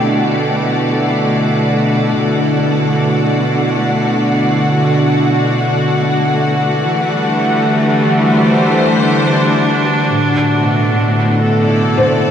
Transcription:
Already playing: B2 A3 E4 G4 A4 D5
0.08 D3 D4 F#4 F#5
6.79 E3
6.95 A3
7.10 G3
7.26 D4
8.26 C5
10.12 A2
10.53 B2 A3
11.43 A4
11.62 E4 D5
11.98 C5

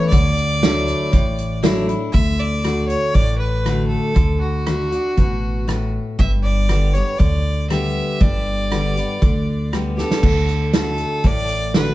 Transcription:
Already playing: E4
0.09 D2 D3 D5, kick, closed hi-hat
0.37 closed hi-hat
0.62 F#3 A3 D4 E4, snare, closed hi-hat
0.88 closed hi-hat
1.12 A1 A2, kick, closed hi-hat
1.38 closed hi-hat
1.63 F#3 A3 D4 E4, snare, closed hi-hat
1.88 D4 E4, closed hi-hat
2.13 D2 D3 E5, kick, closed hi-hat
2.40 D5
2.64 D3 A3 D4 F#4, cross-stick, closed hi-hat
2.88 C#5, closed hi-hat
3.14 A1 A2 D5, kick, closed hi-hat
3.39 B4
3.65 D3 A3 D4 F#4, cross-stick, closed hi-hat
3.88 A4
4.15 D2 D3, kick, closed hi-hat
4.41 F#4
4.66 D3 A3 D4 F#4, cross-stick, closed hi-hat
4.92 D4 F#4, closed hi-hat
5.17 A1 B2, kick, closed hi-hat
5.68 A2, cross-stick, closed hi-hat
6.19 G1 G2 E5, kick, closed hi-hat
6.43 D5
6.68 D3 G3 B3 G4, cross-stick, closed hi-hat
6.93 B3 G4 C#5, closed hi-hat
7.18 D2 D3 D5, kick, closed hi-hat
7.69 D3 G3 B3 G4 E5, cross-stick, closed hi-hat
8.20 G1 G2 D5, kick, closed hi-hat
8.71 D3 G3 B3 G4, cross-stick, closed hi-hat
8.96 B3 G4, closed hi-hat
9.22 D2 D3, kick, closed hi-hat
9.72 D3 G3 B3 G4, cross-stick, closed hi-hat
9.97 B3 G4 A4, snare
10.11 snare
10.23 D2 D3, kick, crash
10.49 closed hi-hat
10.73 D3 A3 D4 F#4 A4, snare, closed hi-hat
10.98 closed hi-hat
11.24 A1 A2 D5, kick, closed hi-hat
11.49 closed hi-hat
11.74 D3 A3 D4 F#4 B4, snare, closed hi-hat

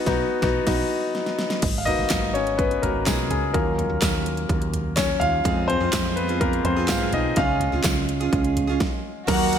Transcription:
0.06 B1 B3 D#4 F#4, kick, snare
0.42 B1 B3 D#4 F#4, kick, snare
0.67 B1 B3 D#4 F#4, kick, snare, crash
1.15 snare
1.26 snare
1.39 snare
1.50 snare
1.62 G#1, kick, closed hi-hat, crash
1.78 F5
1.85 A#3 B3 D#4 F#4 D#5, closed hi-hat, floor tom
1.99 G#1
2.10 G#1, kick, snare, clap, closed hi-hat, tambourine
2.34 C#4 C#5, closed hi-hat
2.47 closed hi-hat
2.57 B3 B4, kick, closed hi-hat
2.71 closed hi-hat
2.82 G#1 A#3 B3 F#4 A#4, closed hi-hat, floor tom
3.06 B1 G#3 G#4, kick, snare, clap, closed hi-hat, tambourine
3.30 C#2 G#3 G#4, closed hi-hat, floor tom
3.54 D#2 F#3 A#3 C#4 F4 A#4, kick, closed hi-hat
3.79 closed hi-hat, floor tom
3.90 D#2
4.01 D#2, kick, snare, clap, closed hi-hat, tambourine
4.26 closed hi-hat
4.37 closed hi-hat
4.49 D#2, kick, closed hi-hat
4.62 closed hi-hat
4.74 closed hi-hat, floor tom
4.96 C#4 C#5, kick, snare, clap, closed hi-hat, tambourine
5.20 D#2 F4 F5, closed hi-hat, floor tom
5.44 F2 G#3 C4 F4 G#4, kick, closed hi-hat
5.68 C4 C5, closed hi-hat, floor tom
5.80 F2 C4 F4 G#4
5.92 F2, kick, snare, clap, closed hi-hat, tambourine
6.16 B3 B4, closed hi-hat
6.28 C4 F4 G#4, closed hi-hat
6.40 A#3 A#4, kick, closed hi-hat
6.53 closed hi-hat
6.65 F2 C4 C5, closed hi-hat, floor tom
6.76 C4 F4 G#4
6.88 G#2 F4 F5, kick, snare, clap, closed hi-hat, tambourine
7.00 C4 F4 G#4
7.13 B1 D#4 D#5, closed hi-hat, floor tom
7.36 C#2 G#3 C#4 F4 G#4 F5, kick, closed hi-hat
7.60 closed hi-hat, floor tom
7.72 C#2 C#4 F4 G#4
7.84 C#2, kick, snare, clap, closed hi-hat, tambourine
8.09 closed hi-hat
8.20 C#4 F4 G#4, closed hi-hat
8.33 C#2, kick, closed hi-hat
8.44 closed hi-hat
8.57 closed hi-hat, floor tom
8.67 C#4 F4 G#4
8.80 kick, snare
9.27 D#2 D#3 F#3 A#3 D#4 F#4 A#4 F#5, kick, crash, ride
9.53 ride

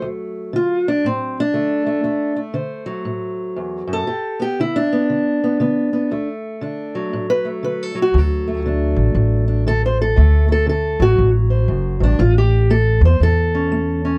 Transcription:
Already playing: F#3 A3
0.02 D2
0.53 D3 F4
0.88 D4
1.05 A2 C4
1.40 D4
1.54 D3 A3
1.87 A3
2.04 D2 A3
2.36 A3
2.54 D3 C5
2.86 F#3
3.05 A2
3.56 E2
3.87 F#2
3.93 A4
4.07 G2 G4
4.40 B3 G4
4.60 D3 E4
4.76 D4
4.93 B3
5.10 D3
5.44 B3
5.60 D3 B3
5.93 B3
6.11 D2 A3
6.61 D3 D4
6.95 F#3
7.13 A2
7.30 B4
7.45 A3
7.63 D3 B4
7.83 A4
7.95 F#3
8.02 F#4
8.14 D2
8.18 A4
8.48 A3
8.66 D3 D4
8.97 A1
9.15 A1 A2
9.48 D4
9.67 D3 A4
9.86 C5
10.02 A4
10.16 D2 A3
10.48 A3 A4
10.67 D3 A4
11.00 A1 F#3 F#4
11.17 A1 A2
11.50 C5
11.68 F#1 F#2
12.00 A1 G2 D4
12.19 A1 A2 F4
12.38 G4
12.70 A3 A4
13.01 E2
13.05 C5
13.20 E2 A2 A4
13.55 C#4
13.72 A3
14.05 C#4

